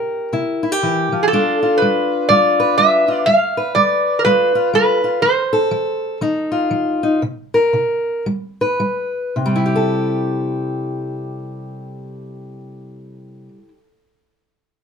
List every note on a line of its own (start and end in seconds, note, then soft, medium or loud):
0.00 0.28 C3 medium
0.00 0.63 G4 medium
0.00 1.29 A#4 medium
0.33 0.78 C3 medium
0.33 0.62 E4 medium
0.63 0.72 E4 medium
0.72 1.31 G4 soft
0.83 1.12 E3 medium
1.12 1.31 F3 medium
1.23 1.27 G#4 medium
1.28 1.77 A4 medium
1.33 1.77 G3 medium
1.33 3.26 D4 medium
1.33 1.62 F4 medium
1.63 2.31 F4 medium
1.78 2.29 B4 medium
1.82 2.26 G3 medium
2.29 2.75 G3 medium
2.29 3.08 F4 medium
2.29 2.77 D5 medium
2.60 3.25 B4 medium
2.78 3.23 G3 medium
2.78 3.23 E5 medium
3.08 3.30 F4 medium
3.26 3.72 G3 medium
3.26 3.74 F5 loud
3.57 5.21 B4 medium
3.75 4.21 G3 medium
3.75 4.20 D5 medium
4.19 4.24 A#4 medium
4.25 4.70 G3 medium
4.25 4.54 F4 medium
4.25 4.70 B4 medium
4.55 5.03 F4 medium
4.73 5.19 G3 medium
4.73 5.20 B4 medium
5.04 5.21 F4 medium
5.22 5.68 F3 medium
5.22 6.17 C5 medium
5.53 7.22 A4 medium
5.71 6.17 F3 medium
6.21 6.68 F3 medium
6.21 7.02 D#4 medium
6.52 7.20 F4 medium
6.71 7.18 F3 medium
7.03 7.20 D#4 medium
7.22 7.70 C3 medium
7.54 8.25 A#4 medium
7.73 8.22 C3 medium
8.26 8.76 G3 medium
8.61 9.35 B4 medium
8.80 9.31 G3 medium
9.36 13.48 C3 medium
9.46 13.58 G3 medium
9.56 13.68 E4 medium
9.66 13.78 G4 medium
9.76 13.88 A4 medium